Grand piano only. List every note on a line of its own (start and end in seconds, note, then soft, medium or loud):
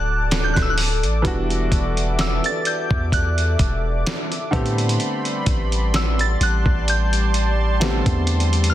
0.00 1.20 D3 medium
0.00 1.20 F#3 medium
0.00 1.21 A3 medium
0.00 1.21 C4 medium
0.00 1.22 F#4 medium
1.22 4.48 E3 medium
1.22 4.48 G3 medium
1.22 4.49 B3 medium
1.22 4.49 D4 medium
1.27 4.50 F#4 medium
4.51 7.76 D3 medium
4.51 7.77 A3 medium
4.51 7.77 B3 medium
4.51 7.78 C4 medium
4.56 7.78 G4 medium
7.80 8.74 D3 soft
7.80 8.74 A3 soft
7.80 8.73 B3 soft
7.80 8.74 C4 soft
7.80 8.74 G4 medium